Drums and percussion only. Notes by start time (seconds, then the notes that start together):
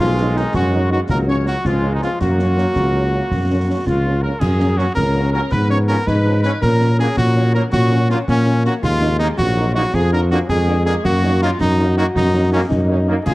0.18 snare
0.37 snare
0.54 concert bass drum, snare
1.09 concert bass drum, snare
1.46 snare
1.65 concert bass drum, snare
2.02 snare
2.21 concert bass drum, snare, crash
2.39 snare
2.58 snare
2.76 concert bass drum, snare
3.31 concert bass drum, snare
3.87 concert bass drum, snare
4.41 concert bass drum, snare, crash
4.60 snare
4.79 snare
4.97 concert bass drum, snare
5.52 concert bass drum, snare
5.89 snare
6.07 concert bass drum, snare
6.44 snare
6.62 concert bass drum, snare, crash
6.81 snare
6.99 snare
7.17 concert bass drum, snare
7.73 concert bass drum, snare
8.10 snare
8.28 concert bass drum, snare
8.65 snare
8.83 concert bass drum, snare, crash
9.01 snare
9.20 snare
9.39 concert bass drum, snare
9.94 concert bass drum, snare
10.31 snare
10.49 concert bass drum, snare
10.86 snare
11.05 concert bass drum, snare, crash
11.24 snare
11.42 snare
11.61 concert bass drum, snare
12.16 concert bass drum, snare
12.71 concert bass drum, snare
13.27 concert bass drum, snare, crash